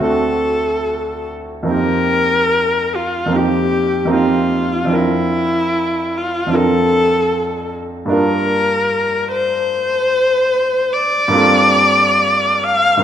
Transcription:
Already playing: grand piano D2 D4 F#4
0.00 grand piano A3 C4 D4
0.05 grand piano F#4, viola A4
1.63 grand piano F2 A#3 C4
1.69 grand piano D#4 G4, viola A#4
2.95 viola F4
3.26 grand piano F2 A#3 C4
3.32 grand piano D#4 G4, viola G4
4.05 grand piano F2 A#3 C4
4.11 grand piano D#4 G4
4.15 viola F4
4.85 grand piano F2 C4
4.89 grand piano D4 F4 A#4
4.95 viola E4
6.17 viola F4
6.47 grand piano F2 C4 D4
6.53 grand piano F4 A#4, viola A4
8.06 grand piano G2 A#3 D4
8.11 grand piano F4 A#4, viola A#4
9.31 viola C5
10.93 viola D5
11.28 grand piano G2 A#3
11.32 grand piano C4 F4
11.36 grand piano A4
12.64 viola F5
12.97 grand piano G2 A#3 C4

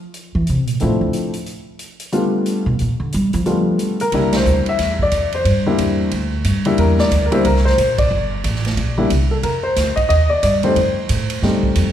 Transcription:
0.14 closed hi-hat
0.35 upright bass E3
0.47 upright bass C3, closed hi-hat
0.67 upright bass A#2, closed hi-hat
0.80 upright bass A2, upright piano F3 A3 C4 D4 E4, closed hi-hat
1.01 upright bass D2
1.13 closed hi-hat
1.33 closed hi-hat
1.46 closed hi-hat
1.79 closed hi-hat
2.00 closed hi-hat
2.12 upright piano G3 A3 B3 D4 F4, closed hi-hat
2.46 closed hi-hat
2.66 upright bass B2
2.79 upright bass A#2, closed hi-hat
3.00 upright bass D3
3.12 upright bass G3, closed hi-hat
3.33 upright bass F3, closed hi-hat
3.46 upright piano G3 A3 B3 D4 F4, closed hi-hat
3.79 closed hi-hat
4.00 upright piano A#4, closed hi-hat
4.12 upright bass C2, upright piano G3 A#3 D4 E4, kick, ride
4.33 upright piano C5, snare, ride
4.45 upright bass D2, hi-hat pedal
4.66 upright piano E5, muted upright bass stroke, ride
4.79 upright bass E2, kick, snare, ride
4.99 upright piano D5, kick
5.11 upright bass F2, kick, hi-hat pedal, ride
5.32 upright piano C5, ride
5.45 upright bass G2, kick, ride
5.66 upright piano G3 A#3 D4 E4
5.78 upright bass E2, kick, hi-hat pedal, ride
6.11 upright bass D2, kick, ride
6.44 upright bass G2, kick, hi-hat pedal, ride
6.65 upright piano G3 A#3 D4 E4, ride
6.78 upright bass E2, upright piano A#4, kick, ride
6.99 upright piano D5, snare
7.11 upright bass D2, kick, hi-hat pedal, ride
7.26 upright piano A#4
7.32 upright piano G3 A#3 D4 E4 C5, ride
7.45 upright bass C2, upright piano A#4, kick, ride
7.56 snare
7.65 upright piano C5, snare
7.78 upright bass A#1, kick, hi-hat pedal, ride
7.98 upright piano D5, kick, ride
8.11 upright bass G1
8.44 upright bass A1, kick, hi-hat pedal, ride
8.55 snare
8.65 snare, ride
8.77 upright bass A#1, kick, ride
8.98 upright piano G3 A#3 D4 E4
9.10 upright bass C2, kick, hi-hat pedal, ride
9.31 upright piano A4
9.43 upright bass F2, upright piano A#4, kick, ride
9.63 upright piano C5
9.76 upright bass D2, kick, snare, hi-hat pedal, ride
9.96 upright piano D#5, muted upright bass stroke, kick, ride
10.09 upright bass D#2, upright piano D#5, kick, ride
10.30 upright piano D5
10.43 upright bass G2, upright piano D5, kick, hi-hat pedal, ride
10.63 upright piano G3 A3 C4 D#4 C5, ride
10.76 upright bass F2, kick, ride
11.09 upright bass A2, kick, hi-hat pedal, ride
11.30 ride
11.42 upright bass G2, upright piano G3 A3 C4 D#4, kick, snare
11.63 kick
11.75 upright bass F2, kick, hi-hat pedal, ride

